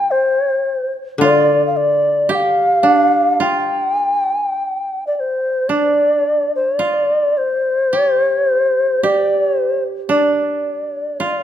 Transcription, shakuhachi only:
0.00 0.12 G5 loud
0.11 0.92 C5 medium
1.23 1.65 D5 medium
1.67 1.78 F5 soft
1.76 2.32 D5 medium
2.31 3.43 F5 medium
2.31 2.36 G5 medium
3.42 4.03 G5 medium
4.03 4.15 G#5 medium
4.15 4.36 G5 medium
4.36 4.48 G#5 medium
4.48 5.06 G5 medium
5.07 5.15 D5 soft
5.15 5.21 D5 medium
5.20 5.71 C5 medium
5.69 6.52 D5 medium
6.55 6.78 C5 medium
6.78 7.39 D5 medium
7.37 7.96 C5 medium
7.96 8.11 C#5 medium
8.11 8.29 C5 medium
8.29 8.44 C#5 medium
8.44 9.05 C5 medium
9.04 9.56 D5 medium
9.56 9.84 C5 medium
10.10 11.43 D5 medium

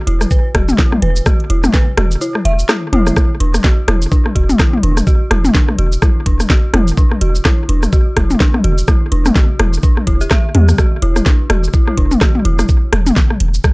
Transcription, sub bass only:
0.07 0.25 E1 medium
0.55 0.73 E1 loud
1.02 1.20 E1 loud
1.50 1.68 E1 loud
1.98 2.16 E1 loud
2.45 2.63 E1 medium
2.93 3.11 E1 medium
3.40 3.58 E1 loud
3.88 4.06 E1 loud
4.36 4.54 E1 loud
4.83 5.01 E1 loud
5.31 5.49 E1 loud
5.78 5.97 E1 loud
6.26 6.44 E1 loud
6.73 6.92 E1 loud
7.21 7.39 E1 loud
7.69 7.87 E1 loud
8.17 8.35 E1 loud
8.64 8.82 E1 loud
9.12 9.30 E1 loud
9.59 9.78 E1 medium
10.07 10.25 E1 medium
10.55 10.73 E2 loud
11.02 11.21 E1 loud
11.50 11.68 E1 loud
11.97 12.16 E1 loud
12.45 12.63 E1 loud
12.93 13.11 E1 loud
13.40 13.59 E1 medium

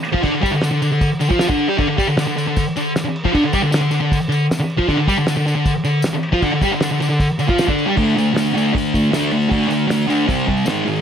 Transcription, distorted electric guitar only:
0.12 0.22 F3 medium
0.12 0.23 F4 loud
0.22 0.30 D3 medium
0.22 0.33 D4 loud
0.31 0.42 D3 medium
0.41 0.51 G3 medium
0.41 0.52 G4 medium
0.51 0.60 D3 medium
0.61 0.69 D3 medium
0.71 0.81 D3 medium
0.82 0.90 D3 medium
0.91 1.07 D3 medium
1.20 1.29 D3 medium
1.29 1.48 F3 medium
1.29 1.49 F4 loud
1.48 1.68 D3 medium
1.48 1.68 D4 loud
1.68 1.78 G3 medium
1.68 1.78 G4 loud
1.77 1.87 D3 medium
1.77 1.88 D4 loud
1.88 1.98 D3 medium
1.97 2.07 G3 medium
1.97 2.07 G4 loud
2.07 2.16 D3 medium
2.17 2.25 D3 medium
2.27 2.35 D3 medium
2.36 2.46 D3 medium
2.47 2.62 D3 medium
2.77 2.91 D3 medium
3.04 muted distorted electric guitar stroke medium
3.24 3.32 F3 medium
3.24 3.33 F4 loud
3.33 3.42 D3 medium
3.33 3.43 D4 loud
3.44 3.53 D3 medium
3.53 3.62 G3 medium
3.53 3.62 G4 loud
3.62 3.70 D3 medium
3.71 3.80 D3 medium
3.81 3.90 D3 medium
3.91 3.99 D3 medium
4.00 4.16 D3 medium
4.29 4.45 D3 medium
4.59 muted distorted electric guitar stroke medium
4.77 4.87 F3 medium
4.77 4.87 F4 loud
4.88 4.97 D3 medium
4.88 4.97 D4 loud
4.98 5.07 D3 medium
5.07 5.16 G3 medium
5.07 5.17 G4 medium
5.17 5.26 D3 medium
5.27 5.35 D3 medium
5.37 5.45 D3 medium
5.46 5.54 D3 medium
5.56 5.71 D3 medium
5.85 6.00 D3 medium
6.13 muted distorted electric guitar stroke medium
6.32 6.41 F3 medium
6.32 6.42 F4 loud
6.42 6.51 D3 loud
6.42 6.52 D4 loud
6.52 6.62 D3 medium
6.62 6.71 G3 medium
6.62 6.72 G4 medium
6.71 6.79 D3 medium
6.80 6.90 D3 medium
6.91 6.99 D3 medium
7.00 7.08 D3 medium
7.09 7.25 D3 medium
7.39 7.47 D3 medium
7.48 7.66 F3 medium
7.48 7.68 F4 medium
7.67 7.86 D3 medium
7.67 7.87 D4 loud
7.86 7.96 G3 medium
7.86 7.96 G4 loud
7.96 8.15 D3 medium
7.96 8.15 A3 medium
7.96 8.15 D4 medium
8.16 8.32 D3 medium
8.16 8.33 A3 medium
8.33 8.52 D3 medium
8.33 8.52 A3 medium
8.54 8.72 D3 medium
8.54 8.72 A3 medium
8.54 8.74 D4 medium
8.73 8.91 D3 medium
8.73 8.91 A3 medium
8.94 9.11 D3 medium
8.94 9.11 A3 medium
9.12 9.31 D3 medium
9.12 9.31 A3 medium
9.12 9.32 D4 medium
9.32 9.48 D3 medium
9.32 9.50 A3 medium
9.49 9.67 D3 medium
9.49 9.68 A3 loud
9.49 9.70 D4 medium
9.68 9.87 D3 medium
9.68 9.87 A3 medium
9.88 10.06 D3 medium
9.88 10.07 A3 medium
10.08 10.27 D3 medium
10.08 10.27 A3 medium
10.08 10.27 D4 loud
10.27 10.45 C3 medium
10.27 10.46 G3 loud
10.27 10.47 C4 loud
10.47 10.65 C3 medium
10.47 10.65 G3 medium
10.65 10.84 G#2 medium
10.65 10.84 D#3 medium
10.65 10.86 G#3 medium
10.85 11.01 G#2 medium
10.85 11.01 D#3 medium

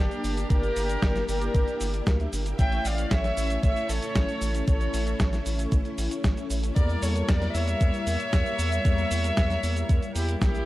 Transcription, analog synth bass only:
0.24 0.45 G1 loud
0.50 0.71 G1 loud
0.76 0.97 G1 medium
1.02 1.23 G1 medium
1.28 1.49 G1 medium
1.55 1.65 G1 loud
1.81 2.01 G1 medium
2.07 2.27 D2 medium
2.33 2.53 G1 medium
2.59 2.79 A1 loud
2.85 3.05 A1 medium
3.11 3.32 A1 medium
3.37 3.58 A1 medium
3.63 3.74 A1 medium
3.89 4.00 A1 medium
4.15 4.26 A1 loud
4.41 4.62 A1 loud
4.68 4.88 A1 loud
4.94 5.14 A1 medium
5.20 5.40 A1 medium
5.46 5.66 A1 medium
5.72 5.82 A1 loud
5.98 6.08 A1 medium
6.24 6.34 A1 medium
6.50 6.71 A1 loud
6.76 6.97 E2 loud
7.02 7.23 E2 loud
7.29 7.49 E2 medium
7.55 7.75 E2 medium
7.81 7.91 E2 loud
8.07 8.17 E2 medium
8.33 8.43 E2 loud
8.59 8.79 E2 loud
8.85 9.06 E2 loud
9.11 9.32 E2 medium
9.37 9.58 E2 medium
9.63 9.84 E2 medium
9.89 10.00 E2 medium
10.15 10.36 E2 medium
10.42 10.62 A#1 medium

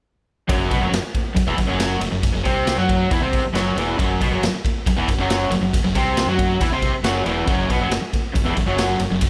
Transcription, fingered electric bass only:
0.49 0.69 F#1 medium
0.72 0.80 B1 loud
0.81 0.91 F#1 medium
0.92 1.02 F#1 medium
1.03 muted fingered electric bass stroke soft
1.36 1.46 F#1 medium
1.47 1.57 E1 medium
1.58 1.68 F#1 medium
1.69 1.99 F#1 medium
2.01 2.11 F#1 medium
2.12 2.32 F#1 medium
2.34 2.44 F#1 medium
2.46 2.76 C2 medium
2.78 3.08 F#2 loud
3.11 3.21 E2 medium
3.21 3.42 C2 loud
3.43 muted fingered electric bass stroke soft
3.54 3.74 F#1 medium
3.75 3.96 E1 loud
3.99 4.19 F#1 loud
4.21 4.31 B1 loud
4.31 4.41 F#1 medium
4.42 4.52 F#1 medium
4.53 muted fingered electric bass stroke soft
4.86 4.96 F#1 medium
4.96 5.06 E1 loud
5.08 5.17 F#1 medium
5.18 5.48 F#1 medium
5.50 5.60 F#1 medium
5.61 5.81 F#1 medium
5.84 5.94 F#1 medium
5.96 6.26 C2 medium
6.26 6.57 F#2 loud
6.61 6.70 E2 medium
6.71 6.91 C2 loud
6.93 muted fingered electric bass stroke soft
7.03 7.24 F#1 loud
7.26 7.46 E1 loud
7.47 7.68 F#1 medium
7.70 7.79 B1 medium
7.79 7.90 F#1 medium
7.91 8.01 F#1 medium
8.02 muted fingered electric bass stroke soft
8.36 8.45 F#1 medium
8.45 8.56 E1 loud
8.57 8.66 F#1 medium
8.67 8.98 F#1 medium
9.00 9.10 F#1 medium
9.11 9.30 F#1 medium

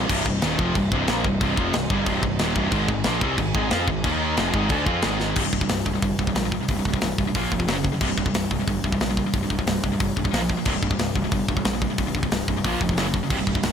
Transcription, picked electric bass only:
0.09 0.25 C1 loud
0.25 0.41 C1 medium
0.43 0.58 D#1 loud
0.59 0.74 F1 medium
0.75 0.90 C1 medium
0.91 1.07 C1 loud
1.08 1.24 A#1 loud
1.24 1.40 C1 medium
1.41 1.56 C1 loud
1.57 1.73 F1 loud
1.74 1.89 C1 medium
1.90 2.05 G1 medium
2.06 2.22 C1 medium
2.22 2.38 C1 medium
2.41 2.55 D#1 medium
2.56 2.71 C1 loud
2.72 2.88 G#1 medium
2.88 3.04 G#1 medium
3.06 3.21 A#1 loud
3.21 3.37 C2 loud
3.38 3.53 G#1 medium
3.55 3.70 G#1 loud
3.72 3.87 F2 loud
3.87 4.03 G#1 medium
4.04 4.35 D#2 loud
4.37 4.53 F1 loud
4.54 4.69 G#1 loud
4.70 4.86 D2 medium
4.86 5.02 F2 loud
5.04 5.35 G#1 medium
5.36 5.47 C1 medium
5.53 5.63 C1 medium
5.70 5.80 C1 medium
5.86 5.97 C1 medium
6.02 6.13 G1 medium
6.19 6.29 C1 medium
6.35 6.56 A#1 medium
6.68 6.79 C1 medium
6.85 6.96 C1 medium
7.02 7.12 C1 medium
7.18 7.29 C1 medium
7.35 7.45 A#1 medium
7.52 7.68 F1 medium
7.68 7.89 F#1 medium
8.01 8.11 C1 medium
8.18 8.28 C1 loud
8.34 8.44 C1 medium
8.51 8.61 C1 medium
8.67 8.78 G1 medium
8.84 8.95 C1 medium
9.01 9.21 A#1 medium
9.33 9.44 C1 medium
9.50 9.61 C1 medium
9.67 9.77 C1 medium
9.84 9.94 C1 medium
10.00 10.10 G1 medium
10.17 10.27 C1 medium
10.33 10.54 A#1 medium
10.66 10.76 C1 medium
10.82 10.93 C1 medium
10.99 11.09 C1 medium
11.15 11.26 C1 medium
11.32 11.42 G1 medium
11.48 11.59 C1 medium
11.65 11.86 A#1 medium
11.98 12.09 C1 medium
12.15 12.25 C1 medium
12.31 12.42 C1 medium
12.48 12.59 C1 medium
12.64 12.75 A#1 medium
12.81 12.98 F1 medium
12.98 13.19 F#1 medium
13.30 13.41 C1 medium
13.47 13.58 C1 medium
13.63 13.72 C1 medium

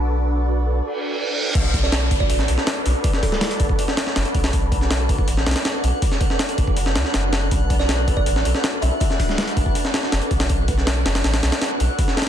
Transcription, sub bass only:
0.00 0.81 B1 medium
1.55 2.10 B1 loud
2.11 2.28 F#1 loud
2.30 2.47 A1 loud
2.49 2.57 B1 medium
2.86 2.94 B1 loud
3.60 3.77 F#1 loud
4.16 4.24 F#1 medium
4.35 4.51 B1 medium
4.53 5.08 B1 loud
5.09 5.26 F#1 loud
5.28 5.45 A1 loud
5.46 5.55 B1 medium
5.83 5.92 B1 loud
6.58 6.97 F#1 loud
6.95 7.04 D2 medium
7.14 7.50 F#1 medium
7.51 8.06 B1 loud
8.08 8.24 F#1 loud
8.26 8.43 A1 loud
8.45 8.53 B1 medium
8.82 8.90 B1 loud
9.57 9.73 F#1 loud
10.12 10.21 F#1 medium
10.31 10.48 B1 medium
10.50 11.04 B1 loud
11.05 11.22 F#1 loud
11.24 11.41 A1 loud
11.43 11.51 B1 medium
11.80 11.88 B1 loud

